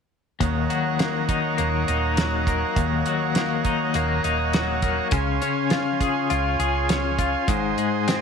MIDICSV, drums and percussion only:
0, 0, Header, 1, 2, 480
1, 0, Start_track
1, 0, Tempo, 589391
1, 336, Time_signature, 4, 2, 24, 8
1, 6689, End_track
2, 0, Start_track
2, 0, Title_t, "Drums"
2, 331, Note_on_c, 9, 36, 91
2, 333, Note_on_c, 9, 42, 75
2, 413, Note_off_c, 9, 36, 0
2, 415, Note_off_c, 9, 42, 0
2, 572, Note_on_c, 9, 42, 49
2, 653, Note_off_c, 9, 42, 0
2, 809, Note_on_c, 9, 42, 67
2, 817, Note_on_c, 9, 38, 96
2, 890, Note_off_c, 9, 42, 0
2, 899, Note_off_c, 9, 38, 0
2, 1048, Note_on_c, 9, 36, 77
2, 1048, Note_on_c, 9, 42, 61
2, 1129, Note_off_c, 9, 42, 0
2, 1130, Note_off_c, 9, 36, 0
2, 1288, Note_on_c, 9, 42, 61
2, 1369, Note_off_c, 9, 42, 0
2, 1531, Note_on_c, 9, 42, 57
2, 1613, Note_off_c, 9, 42, 0
2, 1769, Note_on_c, 9, 42, 82
2, 1777, Note_on_c, 9, 38, 102
2, 1850, Note_off_c, 9, 42, 0
2, 1859, Note_off_c, 9, 38, 0
2, 2011, Note_on_c, 9, 36, 81
2, 2015, Note_on_c, 9, 42, 54
2, 2092, Note_off_c, 9, 36, 0
2, 2097, Note_off_c, 9, 42, 0
2, 2251, Note_on_c, 9, 36, 104
2, 2252, Note_on_c, 9, 42, 76
2, 2332, Note_off_c, 9, 36, 0
2, 2334, Note_off_c, 9, 42, 0
2, 2489, Note_on_c, 9, 42, 56
2, 2571, Note_off_c, 9, 42, 0
2, 2728, Note_on_c, 9, 42, 71
2, 2737, Note_on_c, 9, 38, 86
2, 2810, Note_off_c, 9, 42, 0
2, 2818, Note_off_c, 9, 38, 0
2, 2969, Note_on_c, 9, 42, 55
2, 2971, Note_on_c, 9, 36, 74
2, 3051, Note_off_c, 9, 42, 0
2, 3052, Note_off_c, 9, 36, 0
2, 3209, Note_on_c, 9, 42, 61
2, 3291, Note_off_c, 9, 42, 0
2, 3454, Note_on_c, 9, 42, 48
2, 3536, Note_off_c, 9, 42, 0
2, 3693, Note_on_c, 9, 42, 68
2, 3701, Note_on_c, 9, 38, 104
2, 3774, Note_off_c, 9, 42, 0
2, 3782, Note_off_c, 9, 38, 0
2, 3928, Note_on_c, 9, 42, 56
2, 3930, Note_on_c, 9, 36, 81
2, 4010, Note_off_c, 9, 42, 0
2, 4012, Note_off_c, 9, 36, 0
2, 4163, Note_on_c, 9, 42, 77
2, 4169, Note_on_c, 9, 36, 110
2, 4245, Note_off_c, 9, 42, 0
2, 4251, Note_off_c, 9, 36, 0
2, 4411, Note_on_c, 9, 42, 53
2, 4493, Note_off_c, 9, 42, 0
2, 4644, Note_on_c, 9, 42, 63
2, 4652, Note_on_c, 9, 38, 97
2, 4726, Note_off_c, 9, 42, 0
2, 4734, Note_off_c, 9, 38, 0
2, 4891, Note_on_c, 9, 36, 75
2, 4893, Note_on_c, 9, 42, 55
2, 4972, Note_off_c, 9, 36, 0
2, 4974, Note_off_c, 9, 42, 0
2, 5132, Note_on_c, 9, 42, 64
2, 5213, Note_off_c, 9, 42, 0
2, 5373, Note_on_c, 9, 42, 56
2, 5454, Note_off_c, 9, 42, 0
2, 5613, Note_on_c, 9, 42, 81
2, 5621, Note_on_c, 9, 38, 102
2, 5694, Note_off_c, 9, 42, 0
2, 5702, Note_off_c, 9, 38, 0
2, 5852, Note_on_c, 9, 36, 82
2, 5853, Note_on_c, 9, 42, 65
2, 5933, Note_off_c, 9, 36, 0
2, 5934, Note_off_c, 9, 42, 0
2, 6091, Note_on_c, 9, 42, 83
2, 6092, Note_on_c, 9, 36, 109
2, 6173, Note_off_c, 9, 36, 0
2, 6173, Note_off_c, 9, 42, 0
2, 6334, Note_on_c, 9, 42, 55
2, 6416, Note_off_c, 9, 42, 0
2, 6578, Note_on_c, 9, 42, 80
2, 6587, Note_on_c, 9, 38, 93
2, 6660, Note_off_c, 9, 42, 0
2, 6668, Note_off_c, 9, 38, 0
2, 6689, End_track
0, 0, End_of_file